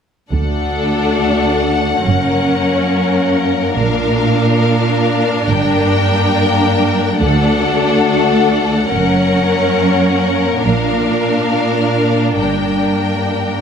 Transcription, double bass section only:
0.32 0.72 D2 soft
2.06 2.46 F#1 soft
3.78 4.18 A#1 medium
5.49 5.89 G1 medium
7.21 7.60 D2 medium
8.92 9.32 F#1 soft
10.65 11.05 A#1 soft
12.40 12.82 G1 soft

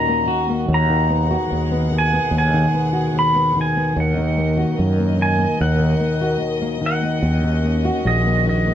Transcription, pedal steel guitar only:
0.00 0.46 A#5 medium
0.74 1.98 A#5 medium
1.98 2.37 G#5 medium
2.38 3.18 G#5 medium
3.19 3.59 B5 loud
3.61 4.00 G#5 medium
4.00 4.76 F#5 medium
5.22 5.61 G#5 medium
5.61 6.38 F#5 medium
6.86 8.03 F#5 loud
8.07 8.48 D#5 medium
8.49 8.74 D#5 medium

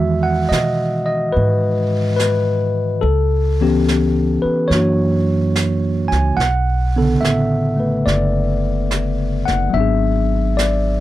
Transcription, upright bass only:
0.00 0.47 E2 medium
0.51 1.31 B2 medium
1.36 2.99 G#2 medium
3.03 4.40 C#2 medium
4.44 muted upright bass stroke soft
4.70 6.08 F#2 medium
6.12 6.36 C#2 medium
6.37 7.18 B1 medium
7.22 8.02 A1 medium
8.06 9.44 F#1 medium
9.48 9.72 F#1 medium
9.74 11.00 G#1 medium

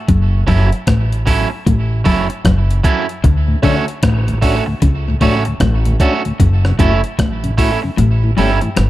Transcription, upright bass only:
0.09 0.43 F#1 loud
0.48 0.69 F#1 loud
0.88 1.43 A1 medium
1.67 2.01 A1 medium
2.06 2.27 F#1 medium
2.45 2.79 F#1 medium
3.25 3.58 D2 medium
3.64 3.85 D2 medium
4.04 4.58 A1 medium
4.83 5.16 C#2 medium
5.21 5.42 A1 medium
5.61 5.95 A1 loud
6.40 6.74 F#1 medium
6.80 7.00 F#1 medium
7.19 7.74 A1 medium
7.98 8.32 A1 loud
8.38 8.58 G1 medium
8.77 8.90 G1 medium

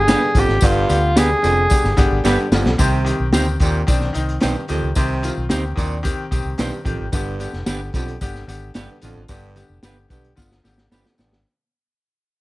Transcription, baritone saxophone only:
0.08 0.30 G2 medium
0.36 0.57 F2 medium
0.62 1.00 G2 loud
1.44 1.65 F2 medium
2.25 2.46 G2 medium
2.52 2.74 F2 medium
2.80 3.17 C3 medium
3.61 3.82 A#2 medium
4.42 4.64 G2 medium
4.69 4.91 F2 medium
4.96 5.34 C3 loud
5.77 5.99 A#2 medium
6.58 6.80 G2 medium
6.85 7.07 F2 medium
7.12 7.50 G2 medium
7.94 8.16 F2 medium
8.75 8.97 G2 medium
9.02 9.24 F2 medium
9.29 9.67 G2 loud
10.10 10.32 G2 medium
10.92 11.13 F2 medium
11.18 11.40 G2 medium

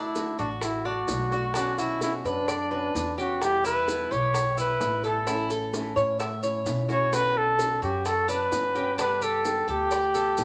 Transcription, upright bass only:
0.39 1.05 A1 medium
1.09 2.19 B1 medium
2.24 2.90 F#2 medium
2.95 4.05 E2 medium
4.11 4.77 B1 medium
4.81 5.90 A1 medium
5.96 6.62 A2 medium
6.66 7.76 B1 medium
7.82 8.48 F#2 medium
8.51 9.61 G2 medium
9.68 10.33 D2 medium
10.38 10.44 A1 medium

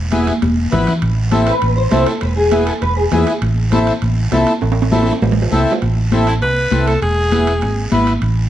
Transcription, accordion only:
0.12 0.33 B3 medium
0.12 0.33 E4 medium
0.12 0.33 G#4 medium
0.72 0.93 B3 medium
0.72 0.93 E4 medium
0.72 0.93 B4 medium
1.31 1.53 C4 medium
1.31 1.53 E4 medium
1.31 1.53 A4 medium
1.91 2.12 C4 medium
1.91 2.13 E4 medium
1.91 2.13 A4 medium
2.51 2.73 B3 medium
2.51 2.73 E4 medium
2.51 2.73 G#4 medium
3.11 3.33 B3 medium
3.11 3.33 E4 medium
3.11 3.33 G#4 medium
3.72 3.93 C4 medium
3.72 3.93 E4 medium
3.72 3.93 A4 medium
4.31 4.53 C4 medium
4.31 4.53 E4 medium
4.31 4.53 A4 loud
4.91 5.13 C4 medium
4.91 5.13 E4 medium
4.91 5.13 A4 medium
5.52 5.73 C4 medium
5.52 5.73 E4 medium
5.52 5.73 A4 medium
6.12 6.33 C4 medium
6.12 6.33 E4 medium
6.12 6.34 A4 medium
6.72 6.93 C4 medium
6.72 6.93 E4 medium
6.72 6.93 A4 medium
7.31 7.53 B3 medium
7.31 7.53 E4 medium
7.31 7.53 G#4 medium
7.92 8.13 B3 medium
7.92 8.13 E4 medium
7.92 8.13 B4 medium

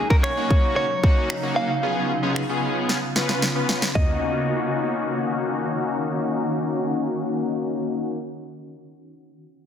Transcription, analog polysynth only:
0.10 0.30 A#3 medium
0.10 0.30 C#4 medium
0.10 0.30 D#4 medium
0.10 0.30 F#4 medium
0.37 0.85 A#3 medium
0.37 0.85 C#4 medium
0.37 0.85 D#4 medium
0.37 0.85 F#4 medium
1.03 1.32 A#3 medium
1.03 1.32 C#4 medium
1.03 1.32 D#4 medium
1.03 1.32 F#4 medium
1.43 1.72 A#3 medium
1.43 1.72 C#4 medium
1.43 1.72 D#4 medium
1.43 1.72 F#4 medium
1.83 2.12 B3 medium
1.83 2.12 C#4 medium
1.83 2.12 F4 medium
1.83 2.12 G#4 medium
2.23 2.42 B3 medium
2.23 2.42 C#4 medium
2.23 2.42 F4 medium
2.23 2.42 G#4 loud
2.49 2.97 B3 medium
2.49 2.97 C#4 medium
2.49 2.97 F4 medium
2.49 2.98 G#4 loud
3.16 3.45 B3 medium
3.16 3.45 C#4 medium
3.16 3.45 F4 medium
3.16 3.45 B4 loud
3.55 3.84 B3 medium
3.55 3.84 C#4 medium
3.55 3.84 F4 medium
3.55 3.85 B4 medium
3.95 8.18 A#3 medium
3.95 8.18 C#4 medium
3.95 8.18 D#4 medium
3.95 8.18 F#4 medium

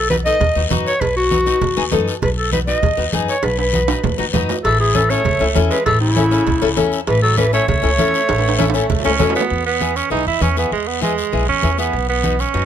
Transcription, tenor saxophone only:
4.65 4.79 E3 medium
4.79 4.95 E3 medium
4.95 5.12 E3 medium
5.10 5.56 A3 medium
5.70 5.85 G#3 medium
5.86 6.00 E3 medium
6.00 6.88 C#3 medium
7.07 7.22 E3 medium
7.22 7.36 F#3 medium
7.37 7.52 E3 medium
7.54 7.68 A3 medium
7.68 9.01 A3 medium
9.05 9.34 C#4 medium
9.36 9.64 B3 medium
9.66 9.98 B3 medium
9.96 10.11 C#4 medium
10.11 10.26 D#4 medium
10.27 10.44 E4 medium
10.42 10.57 C#4 medium
10.58 10.72 B3 medium
10.72 10.89 G#3 medium
10.88 11.02 B3 medium
11.03 11.45 G#3 medium
11.49 11.77 C#4 medium
11.79 12.07 B3 medium
12.09 12.41 B3 medium
12.40 12.65 C#4 medium

